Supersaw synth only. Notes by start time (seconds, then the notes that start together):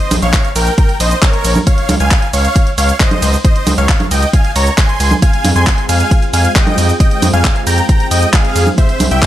Already playing: C5 D#5
0.22 C#5 F5
0.56 A#4 G5
0.78 A#4 G5
1.00 C5 D#5
1.22 A#4 C#5
1.67 C#5 F5
2.00 F5 G#5
2.33 C#5 F5
2.78 C#5 F5
3.00 C5 D#5
3.45 C5 D#5
3.78 C#5 F5
4.11 D#5 G5
4.33 F5 G#5
4.56 C#5 A#5
4.78 G#5 C6
5.22 F5 G#5
5.56 G#5 C6
5.89 F5 G#5
6.33 F5 G#5
6.56 D#5 G5
7.00 D#5 G5
7.33 F5 G#5
7.67 G5 A#5
7.89 G5 A#5
8.11 D#5 G5
8.33 G#4 F5
8.78 C5 E5
9.11 E5 G5